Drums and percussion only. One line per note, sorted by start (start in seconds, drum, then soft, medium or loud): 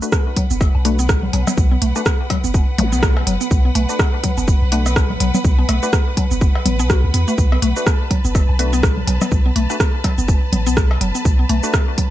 0.02 shaker medium
0.12 kick loud
0.12 cross-stick medium
0.12 low woodblock soft
0.12 shaker soft
0.37 kick medium
0.37 open hi-hat medium
0.51 shaker medium
0.61 kick loud
0.61 cowbell medium
0.61 shaker soft
0.75 low woodblock soft
0.85 open hi-hat medium
0.99 shaker medium
1.09 kick loud
1.09 cross-stick medium
1.09 shaker soft
1.23 low conga medium
1.33 open hi-hat medium
1.33 low woodblock soft
1.47 cowbell medium
1.47 low conga medium
1.47 shaker medium
1.57 kick loud
1.57 shaker soft
1.82 open hi-hat medium
1.96 low woodblock soft
1.96 shaker medium
2.06 kick loud
2.06 cross-stick medium
2.06 shaker soft
2.30 kick medium
2.30 open hi-hat medium
2.30 cowbell medium
2.44 shaker medium
2.54 kick loud
2.54 low woodblock soft
2.54 shaker soft
2.78 open hi-hat medium
2.78 low conga loud
2.93 shaker medium
3.03 kick loud
3.03 cross-stick loud
3.03 shaker soft
3.17 cowbell medium
3.17 low woodblock soft
3.27 open hi-hat medium
3.41 shaker medium
3.51 kick loud
3.51 shaker soft
3.75 open hi-hat medium
3.75 low woodblock soft
3.89 shaker medium
3.99 kick loud
3.99 cross-stick medium
3.99 cowbell medium
3.99 shaker soft
4.24 kick medium
4.24 open hi-hat loud
4.38 low woodblock soft
4.38 shaker soft
4.48 kick loud
4.48 shaker soft
4.72 open hi-hat loud
4.86 cowbell medium
4.86 shaker soft
4.96 kick loud
4.96 cross-stick medium
4.96 low woodblock soft
4.96 shaker soft
5.10 low conga medium
5.20 open hi-hat loud
5.34 low conga medium
5.34 shaker medium
5.45 kick loud
5.45 shaker soft
5.59 low woodblock soft
5.69 open hi-hat loud
5.69 cowbell medium
5.83 shaker soft
5.93 kick loud
5.93 cross-stick medium
5.93 shaker soft
6.17 kick medium
6.17 open hi-hat loud
6.17 low woodblock soft
6.31 shaker medium
6.41 kick loud
6.41 shaker soft
6.55 cowbell medium
6.66 open hi-hat loud
6.66 low conga medium
6.80 low woodblock soft
6.80 shaker soft
6.90 kick loud
6.90 cross-stick medium
6.90 shaker soft
7.14 open hi-hat loud
7.28 shaker medium
7.38 kick loud
7.38 shaker soft
7.52 cowbell medium
7.62 open hi-hat medium
7.76 shaker soft
7.87 kick loud
7.87 cross-stick medium
7.87 low woodblock soft
7.87 shaker soft
8.11 kick medium
8.11 open hi-hat medium
8.25 shaker soft
8.35 kick loud
8.35 cowbell medium
8.35 shaker soft
8.49 low woodblock soft
8.59 open hi-hat medium
8.73 shaker soft
8.83 kick loud
8.83 cross-stick medium
8.83 shaker soft
8.97 low conga medium
9.07 open hi-hat medium
9.07 low woodblock soft
9.21 cowbell medium
9.21 low conga medium
9.21 shaker medium
9.32 kick loud
9.32 shaker soft
9.56 open hi-hat medium
9.70 low woodblock soft
9.70 shaker medium
9.80 kick loud
9.80 cross-stick medium
9.80 shaker soft
10.04 kick medium
10.04 open hi-hat medium
10.04 cowbell medium
10.18 shaker medium
10.28 kick loud
10.28 low woodblock soft
10.28 shaker soft
10.53 open hi-hat medium
10.53 low conga medium
10.67 shaker medium
10.77 kick loud
10.77 cross-stick medium
10.77 shaker soft
10.91 cowbell medium
10.91 low woodblock soft
11.01 open hi-hat medium
11.15 shaker medium
11.25 kick loud
11.25 shaker soft
11.49 open hi-hat medium
11.49 low woodblock soft
11.63 shaker medium
11.74 kick loud
11.74 cross-stick medium
11.74 cowbell medium
11.74 shaker soft
11.98 kick medium
11.98 open hi-hat medium